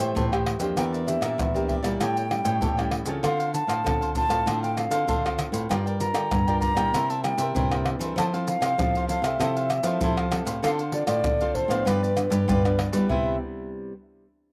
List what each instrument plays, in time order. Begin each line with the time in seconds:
Already playing: nylon-string guitar A2 A3 E4 G4 C5, ocarina C5
0.00 cavaquinho C5 E5 G5
0.15 nylon-string guitar A2 E3, cavaquinho A4 C5 E5 G5, pandeiro, maracas, surdo
0.32 nylon-string guitar E4 G4 C5, cavaquinho C5 E5 G5, pandeiro, tamborim, maracas
0.46 pandeiro, tamborim
0.60 nylon-string guitar F2 A#3 D4 G4, cavaquinho C5 E5 G5, pandeiro, maracas
0.76 nylon-string guitar E2 E3, cavaquinho G4 A#4 D5 E5, ocarina G5, pandeiro, tamborim, maracas, surdo
0.93 cavaquinho A#4 D5 E5, pandeiro, maracas
1.06 nylon-string guitar A#3 D4 G4, ocarina E5, muted cavaquinho stroke, pandeiro, maracas
1.21 nylon-string guitar A#2, cavaquinho A#4 D5 E5, pandeiro, tamborim, maracas
1.38 nylon-string guitar E2 E3, pandeiro, tamborim, maracas, surdo
1.54 nylon-string guitar A#3 D4 G4, cavaquinho A#4 D5 E5, pandeiro, maracas
1.68 cavaquinho G4 A#4 D5 E5, ocarina E5, pandeiro, surdo
1.82 nylon-string guitar A#2 G3 C#4 E4, cavaquinho A#4 D5 E5, pandeiro, tamborim, maracas
2.00 nylon-string guitar A2, cavaquinho G4 A4 C#5 G5, ocarina G5, pandeiro, tamborim, maracas, surdo
2.16 cavaquinho A4 C#5 G5, pandeiro, maracas
2.30 nylon-string guitar G3 C#4 E4, muted cavaquinho stroke, pandeiro, tamborim
2.45 nylon-string guitar A2, cavaquinho A4 C#5 G5, pandeiro, maracas
2.61 nylon-string guitar A2 E3, cavaquinho G4 A4 C#5 G5, pandeiro, maracas, surdo
2.77 nylon-string guitar G3 C#4 E4, cavaquinho A4 C#5 G5, pandeiro, tamborim, maracas
2.91 pandeiro, tamborim
3.06 nylon-string guitar C#3 C4 F4 A4, cavaquinho A4 C#5 G5, pandeiro, maracas
3.23 nylon-string guitar D3, cavaquinho D4 A4 C5 F5, ocarina F5, pandeiro, tamborim, maracas, surdo
3.39 cavaquinho A4 C5 F5, pandeiro, maracas
3.53 ocarina A5, muted cavaquinho stroke, pandeiro, maracas
3.67 nylon-string guitar A2, cavaquinho A4 C5 F5, pandeiro, tamborim, maracas
3.84 nylon-string guitar A2 D3 C4 F4 A4, pandeiro, tamborim, maracas, surdo
4.01 cavaquinho A4 C5 F5, pandeiro, maracas
4.15 nylon-string guitar C4 F4 A4, cavaquinho D4 A4 C5 F5, ocarina A5, pandeiro, maracas, surdo
4.29 nylon-string guitar A2 C4 F4 A4, cavaquinho A4 C5 F5, pandeiro, tamborim, maracas
4.46 nylon-string guitar A2 D3, cavaquinho D4 A4 C5 F5, pandeiro, tamborim, maracas, surdo
4.63 cavaquinho A4 C5 F5, ocarina G5, pandeiro, maracas
4.77 nylon-string guitar C4 F4 A4, ocarina F5, muted cavaquinho stroke, pandeiro, tamborim, maracas
4.90 nylon-string guitar D3, cavaquinho A4 C5 F5, pandeiro, maracas
5.07 nylon-string guitar A2 D3, cavaquinho D4 A4 C5 F5, pandeiro, maracas, surdo
5.25 nylon-string guitar C4 F4 A4, cavaquinho A4 C5 F5, pandeiro, tamborim, maracas
5.39 pandeiro, tamborim, maracas
5.52 nylon-string guitar A2, cavaquinho A4 C5 F5, pandeiro, maracas
5.69 nylon-string guitar G2 G3 D4 F4 A#4, cavaquinho F4 A#4 D5 G5, ocarina G5, pandeiro, tamborim, maracas, surdo
5.86 cavaquinho A#4 D5 G5, pandeiro, maracas
6.00 nylon-string guitar D4 F4 A#4, ocarina A#5, muted cavaquinho stroke, pandeiro, maracas
6.14 nylon-string guitar D3, cavaquinho A#4 D5 G5, pandeiro, tamborim, maracas
6.31 nylon-string guitar G2 D3, pandeiro, tamborim, maracas, surdo
6.47 nylon-string guitar D4 F4 A#4, cavaquinho A#4 D5 G5, pandeiro, maracas
6.60 cavaquinho F4 A#4 D5 G5, ocarina A#5, pandeiro, maracas, surdo
6.75 nylon-string guitar A#2 G3 A#3 E4, cavaquinho A#4 D5 G5, pandeiro, tamborim, maracas
6.93 nylon-string guitar C3, cavaquinho E4 A#4 C5 E5, pandeiro, tamborim, maracas, surdo
7.10 cavaquinho A#4 C5 E5, ocarina A5, pandeiro, maracas
7.23 nylon-string guitar G3 A#3 E4, ocarina G5, muted cavaquinho stroke, pandeiro, tamborim, maracas
7.38 nylon-string guitar C3, cavaquinho A#4 C5 E5, pandeiro, maracas
7.55 nylon-string guitar G2 C3, cavaquinho E4 A#4 C5 E5, pandeiro, maracas, surdo
7.71 nylon-string guitar G3 A#3 E4, cavaquinho A#4 C5 E5, pandeiro, tamborim, maracas
7.86 pandeiro, tamborim
7.99 nylon-string guitar E3 C4 E4 A4, cavaquinho C5 E5, pandeiro, maracas
8.04 cavaquinho A#4
8.16 nylon-string guitar F3, cavaquinho E4 A4 C5, ocarina A5, pandeiro, tamborim, maracas, surdo
8.20 cavaquinho F5
8.33 nylon-string guitar C4 E4 A4, cavaquinho A4 C5 F5, pandeiro, maracas
8.48 ocarina F5, muted cavaquinho stroke, pandeiro, maracas
8.61 nylon-string guitar C3, cavaquinho F5, pandeiro, tamborim, maracas
8.65 cavaquinho A4 C5
8.78 nylon-string guitar C3 F3 C4 E4 A4, pandeiro, tamborim, maracas, surdo
8.95 cavaquinho A4 C5 F5, pandeiro, maracas
9.07 nylon-string guitar C4 E4 A4, cavaquinho E4 A4 C5, ocarina F5, pandeiro, maracas
9.12 cavaquinho F5
9.22 nylon-string guitar C3, cavaquinho C5 F5, ocarina E5, pandeiro, tamborim, maracas
9.26 cavaquinho A4
9.38 nylon-string guitar C3 F3 C4 E4 A4, cavaquinho E4 A4 C5, pandeiro, tamborim, maracas, surdo
9.43 cavaquinho F5
9.57 cavaquinho A4 C5 F5, pandeiro, maracas
9.70 muted cavaquinho stroke, pandeiro, tamborim, maracas
9.83 nylon-string guitar F3 C4 E4 A4, cavaquinho A4 C5 F5, pandeiro, maracas
10.00 nylon-string guitar C3 F3, cavaquinho E4 A4 C5, pandeiro, maracas, surdo
10.05 cavaquinho F5
10.17 cavaquinho A4 C5 F5, pandeiro, tamborim, maracas
10.31 nylon-string guitar C4 E4 A4, pandeiro, tamborim, maracas
10.45 nylon-string guitar A2, cavaquinho A4 C5 F5, pandeiro, maracas
10.63 nylon-string guitar D3 C4 F4 A4, cavaquinho D4 A4 C5 F5, ocarina F5, pandeiro, tamborim, maracas, surdo
10.79 cavaquinho A4 C5 F5, pandeiro, maracas
10.92 nylon-string guitar C4 F4 A4, ocarina D5, muted cavaquinho stroke, pandeiro
11.07 nylon-string guitar A2, cavaquinho A4 C5 F5, ocarina D5, pandeiro, tamborim, maracas
11.24 nylon-string guitar D3, pandeiro, tamborim, maracas, surdo
11.41 nylon-string guitar C4 F4 A4, cavaquinho A4 C5 F5, pandeiro, maracas
11.55 cavaquinho D4 A4 C5 F5, ocarina C5, pandeiro, surdo
11.68 nylon-string guitar A2 F3 B3 D4, cavaquinho A4 C5 F5, pandeiro, tamborim, maracas
11.85 nylon-string guitar G2, cavaquinho F4 G4 B4 D5, ocarina B4, pandeiro, tamborim, maracas, surdo
12.03 cavaquinho G4 B4 D5, pandeiro, maracas
12.16 nylon-string guitar F3 B3 D4, muted cavaquinho stroke, pandeiro, tamborim, maracas
12.30 nylon-string guitar G2, cavaquinho G4 B4 D5, pandeiro, maracas
12.48 nylon-string guitar G2 D3, cavaquinho F4 G4 B4 D5, pandeiro, maracas, surdo
12.64 nylon-string guitar F3 B3 D4, cavaquinho G4 B4 D5, pandeiro, tamborim, maracas
12.79 pandeiro, tamborim
12.92 nylon-string guitar G3 B3 E4, cavaquinho G4 B4 D5, pandeiro, maracas
13.09 nylon-string guitar C3 G3 B3 E4, cavaquinho E4 B4 C5 E5, ocarina E5, surdo